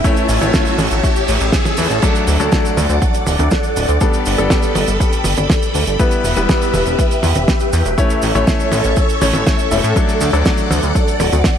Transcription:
Already playing: E5 E6, riser
0.04 A3 C#4 E4 C#5 A5, kick, closed hi-hat, cabasa
0.17 closed hi-hat, cabasa
0.29 A1, open hi-hat, cabasa
0.41 A1 A3 C#4 E4 C#5, closed hi-hat, high tom, cabasa
0.54 kick, snare, closed hi-hat, cabasa
0.65 closed hi-hat, cabasa
0.78 A1, open hi-hat, high tom, cabasa
0.91 A1, closed hi-hat, cabasa
1.04 kick, closed hi-hat, cabasa
1.16 closed hi-hat, cabasa
1.28 A1, open hi-hat, cabasa
1.40 A1, closed hi-hat, cabasa
1.52 kick, snare, closed hi-hat, cabasa
1.65 closed hi-hat, high tom, cabasa
1.77 E2, open hi-hat, cabasa
1.90 A1, closed hi-hat, cabasa
2.02 F#3 A3 D4 A4 D5 F#5 D6, kick, closed hi-hat, crash, cabasa
2.15 closed hi-hat, cabasa
2.27 D2, open hi-hat, cabasa
2.40 D2 F#3 A3 D4 A4, closed hi-hat, cabasa
2.52 kick, snare, closed hi-hat, cabasa
2.65 closed hi-hat, cabasa
2.77 D2, open hi-hat, high tom, cabasa
2.89 D2, closed hi-hat, cabasa
3.02 kick, closed hi-hat, cabasa
3.14 closed hi-hat, cabasa
3.27 D1, open hi-hat, high tom, cabasa
3.39 D2, closed hi-hat, high tom, cabasa
3.51 kick, snare, closed hi-hat, cabasa
3.63 closed hi-hat, cabasa
3.76 D1, open hi-hat, cabasa
3.89 D2, closed hi-hat, cabasa
4.01 G3 B3 D4 A4 G5 B5, kick, closed hi-hat, cabasa
4.13 closed hi-hat, cabasa
4.26 G1, open hi-hat, cabasa
4.38 G1 G3 B3 D4 A4, closed hi-hat, high tom, cabasa
4.50 kick, snare, closed hi-hat, cabasa
4.63 closed hi-hat, cabasa
4.75 G1, open hi-hat, high tom, cabasa
4.87 G1, closed hi-hat, cabasa
5.00 kick, closed hi-hat, cabasa
5.13 closed hi-hat, cabasa
5.24 G1, open hi-hat, high tom, cabasa
5.37 G1, closed hi-hat, high tom, cabasa
5.50 kick, snare, closed hi-hat, cabasa
5.62 closed hi-hat, cabasa
5.74 D2, open hi-hat, cabasa
5.87 G1, closed hi-hat, cabasa
5.99 G3 B3 E4 G4 B4 E5, kick, closed hi-hat, cabasa
6.11 closed hi-hat, cabasa
6.24 E1, open hi-hat, cabasa
6.36 E1 G3 B3 E4 B4, closed hi-hat, cabasa
6.49 kick, snare, closed hi-hat, cabasa
6.61 closed hi-hat, cabasa
6.74 E1, open hi-hat, high tom, cabasa
6.85 E1, closed hi-hat, cabasa
6.99 kick, closed hi-hat, cabasa
7.11 closed hi-hat, cabasa
7.23 E2, open hi-hat, high tom, cabasa
7.35 E1, closed hi-hat, high tom, cabasa
7.48 kick, snare, closed hi-hat, cabasa
7.60 closed hi-hat, cabasa
7.73 E2, open hi-hat, cabasa
7.85 E1, closed hi-hat, cabasa
7.98 A3 C#4 E4 A4 C#5 E5 C#6, kick, closed hi-hat, cabasa
8.10 closed hi-hat, cabasa
8.22 A1, open hi-hat, cabasa
8.35 A1 A3 C#4 E4 C#5, closed hi-hat, high tom, cabasa
8.47 kick, snare, closed hi-hat, cabasa
8.60 closed hi-hat, cabasa
8.72 A1, open hi-hat, high tom, cabasa
8.84 A1, closed hi-hat, cabasa
8.96 kick, closed hi-hat, cabasa
9.09 closed hi-hat, cabasa
9.22 A1 A3 C#4 E4 C#5, open hi-hat, high tom, cabasa
9.34 A1, closed hi-hat, high tom, cabasa
9.47 kick, snare, closed hi-hat, cabasa
9.59 closed hi-hat, cabasa
9.71 E1 A3 C#4 E4 E5, open hi-hat, cabasa
9.84 A2, closed hi-hat, cabasa
9.96 F#3 A3 D4 A4 D5 F#5 D6, kick, closed hi-hat, cabasa
10.09 closed hi-hat, cabasa
10.21 D2, open hi-hat, cabasa
10.33 D2 F#3 A3 D4 A4, closed hi-hat, cabasa
10.45 kick, snare, closed hi-hat, cabasa
10.57 closed hi-hat, cabasa
10.70 D2, open hi-hat, high tom, cabasa
10.82 D2, closed hi-hat, cabasa
10.95 kick, closed hi-hat, cabasa
11.08 closed hi-hat, cabasa
11.20 D1, open hi-hat, high tom, cabasa
11.32 D2, closed hi-hat, high tom, cabasa
11.44 kick, snare, closed hi-hat, cabasa

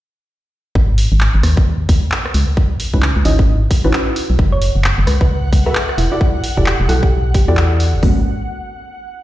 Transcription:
0.75 G#1, kick
0.98 open hi-hat
1.12 G#1
1.21 clap
1.35 G#1
1.43 D#2, cross-stick, open hi-hat
1.57 kick
1.89 D#2, kick, open hi-hat
2.12 clap
2.26 cross-stick
2.34 C#2, open hi-hat
2.57 kick
2.80 open hi-hat
2.94 C#2 C#4 D#4 E4 F#4 B4, kick
3.02 clap
3.16 C#2
3.25 G#1 C#4 D#4 E4 F#4 D#5, open hi-hat
3.39 kick
3.71 kick, open hi-hat
3.84 G#1 C#4 D#4 E4 F#4 B4, cross-stick
3.93 clap
4.16 open hi-hat
4.30 B1
4.39 F#1 F#5, kick
4.52 C#5
4.62 open hi-hat
4.76 F#1
4.84 clap
4.98 F#1
5.07 C#2 B4, cross-stick, open hi-hat
5.21 B4, kick
5.53 C#2, kick, open hi-hat
5.66 F#4 G#4 A4 B4 E5
5.75 clap
5.89 cross-stick
5.98 E1 E4, open hi-hat
6.12 E4 F#4 G4 A4 D5
6.21 kick
6.44 open hi-hat
6.57 E1 E4 F#4 G4 A4 D5, kick
6.66 G4, clap
6.80 E1
6.89 B1 E4 F#4 G4 A4 F#5, open hi-hat
7.03 G4, kick
7.34 A1 G4, kick, open hi-hat
7.48 E2 E4 F#4 G4 A4 D5, cross-stick
7.57 clap
7.80 open hi-hat
7.94 G1
8.03 G#1 G#3 A#3 B3 C#4 F#4, kick, floor tom, open hi-hat

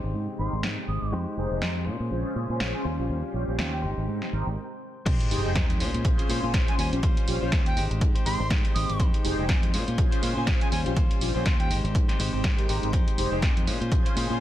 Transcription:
Already playing: G#3 C4 D#4 G4 C5 G5
0.03 G#1
0.14 G#2
0.39 G#1 D#4 G4 A#4 C5 C6
0.53 G#1
0.63 G#2, snare
0.88 G#1 D#6
1.02 G#1
1.12 F2 G#3 D#4 G4 C5 G5
1.37 F1 D#4 G4 G#4 C5
1.51 F1 D#4 G4 G#4 C5
1.61 F2 G#3 D#4 G4 G#4 C5, snare
1.85 A#2 G#3 C#4 F4 C5 G#5
2.00 A#2
2.11 A#1 C#4 F4 G#4 C5
2.35 A#2
2.49 A#2 C#4 F4 G#4 C5
2.60 A#1, snare
2.74 G#5
2.84 D#2 G3 C#4 F4 G4 C5 F5 G#5
2.99 A#1 C#4 F4 G4 C5
3.09 D#2
3.34 A#1 C#4 F4 G4 C5
3.48 A#1 C#4 F4 G4 C5
3.58 D#2 G3 C#4 F4 G4 C5, snare
3.73 G5
3.82 G#1 G#3 C4 D#4 G4 C5 G5
3.97 G#1
4.08 G#2
4.22 snare
4.32 G#1 D#4 G4 A#4 C5
4.47 G#1
5.06 F2 G#3 D#4 G4 C5 G5, kick, closed hi-hat, crash, sub drop
5.20 closed hi-hat
5.31 F1 D#4 G4 G#4 C5, open hi-hat
5.44 F1 D#4 G4 G#4 C5
5.55 F2 G#3 D#4 G4 G#4 C5, kick, snare, closed hi-hat
5.70 closed hi-hat
5.79 A#2 G#3 C#4 F4 C5 G#5, open hi-hat
5.94 A#2, closed hi-hat
6.04 A#1 C#4 F4 G#4 C5, kick, closed hi-hat
6.18 C#4 F4 C5, closed hi-hat
6.29 A#2 G#3 C#4 F4 C5, open hi-hat
6.43 A#2 C#4 F4 G#4 C5
6.54 A#1 G#3 C#4 F4 C5, kick, snare, closed hi-hat
6.68 G#5, closed hi-hat
6.78 D#2 G3 C#4 F4 G4 C5 F5 G#5, open hi-hat
6.92 A#1 C#4 F4 G4 C5, closed hi-hat
7.03 D#2 G3 C#4 F4 C5, kick, closed hi-hat
7.17 closed hi-hat
7.28 A#1 C#4 F4 G4 C5, open hi-hat
7.41 A#1 C#4 F4 G4 C5
7.52 G3 C#4 F4 G4 C5, kick, snare, closed hi-hat
7.66 G5, closed hi-hat
7.76 G#1 G#3 C4 D#4 G4 C5 G5, open hi-hat
7.90 G#1, closed hi-hat
8.01 G#2, kick, closed hi-hat
8.15 D#4 G4 C5, closed hi-hat
8.25 G#1 G#3 D#4 G4 A#4 C5 C6, open hi-hat
8.40 G#1 D#4 G4 C5
8.50 G#2 G#3 D#4 G4 C5, kick, snare, closed hi-hat
8.65 closed hi-hat
8.74 G#1 G#3 D#4 G4 C5 D#6, open hi-hat
8.89 G#1, closed hi-hat
8.99 F2 G#3 D#4 G4 C5, kick, closed hi-hat
9.14 closed hi-hat
9.24 F1 D#4 G4 G#4 C5, open hi-hat
9.38 F1 D#4 G4 G#4 C5
9.49 F2 G#3 D#4 G4 G#4 C5, kick, snare, closed hi-hat
9.63 closed hi-hat
9.73 A#2 G#3 C#4 F4 C5 G#5, open hi-hat
9.87 A#2 C#4 F4 C5, closed hi-hat
9.98 A#1 C#4 F4 G#4 C5, kick, closed hi-hat
10.11 C#4 F4 C5, closed hi-hat
10.22 A#2 G#3 C#4 F4 C5, open hi-hat
10.35 A#2 C#4 F4 G#4 C5
10.47 A#1 G#3 C#4 F4 C5, kick, snare, closed hi-hat
10.61 G#5, closed hi-hat
10.71 D#2 G3 C#4 F4 G4 C5 F5 G#5, open hi-hat
10.86 A#1 C#4 F4 G4 C5, closed hi-hat
10.96 G3 C#4 F4 C5, kick, closed hi-hat
11.11 closed hi-hat
11.21 A#1 C#4 F4 G4 C5, open hi-hat
11.34 A#1 C#4 F4 G4 C5
11.45 G3 C#4 F4 G4 C5, kick, snare, closed hi-hat
11.59 G5, closed hi-hat
11.70 G#1 G#3 C4 D#4 G4 C5 G5, open hi-hat
11.84 G#1 D#4 G4 C5, closed hi-hat
11.95 G#2, kick, closed hi-hat
12.08 D#4 G4 C5, snare, closed hi-hat
12.19 G#1 G#3 D#4 G4 C5, open hi-hat
12.33 G#1 D#4 G4 C5
12.44 G#2 G#3 G4, kick, snare, closed hi-hat
12.58 D#4 G4 A#4 C5, closed hi-hat
12.68 G#1 G#3 D#4 G4 A#4 C5, open hi-hat
12.82 G#1 D#4 G4 A#4 C5, closed hi-hat
12.92 F2 G#3 D#4 G4 C5, kick, closed hi-hat
13.08 closed hi-hat
13.18 F1 D#4 G4 G#4 C5, open hi-hat
13.31 F1 D#4 G4 G#4 C5
13.42 F2 G#3 D#4 G4 G#4 C5, kick, snare, closed hi-hat
13.57 closed hi-hat
13.66 A#2 G#3 C#4 F4 C5 G#5, open hi-hat
13.80 A#2 C#4 F4 C5, closed hi-hat
13.91 A#1 C#4 F4 G#4 C5, kick, closed hi-hat
14.05 C#4 F4 C5, closed hi-hat
14.16 A#2 G#3 C#4 F4 C5, open hi-hat
14.29 A#2 C#4 F4 G#4 C5

